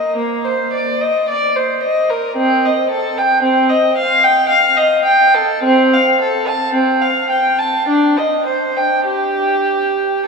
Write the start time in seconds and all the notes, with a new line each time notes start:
Already playing: D#5
0.16 A#3
0.45 C5
0.73 D5
1.01 D#5
1.29 D5
1.56 C5
1.83 D#5
2.10 A#4
2.36 C4
2.65 D#5
2.91 A4
3.18 G5
3.43 C4
3.69 D#5
3.97 F5
4.23 G5
4.49 F5
4.77 D#5
5.05 G5
5.34 A4
5.63 C4
5.93 F5
6.21 A4
6.47 A5
6.74 C4
7.01 F5
7.30 G5
7.59 A5
7.88 D4
8.17 D#5
8.46 C5
8.77 G5
9.05 G4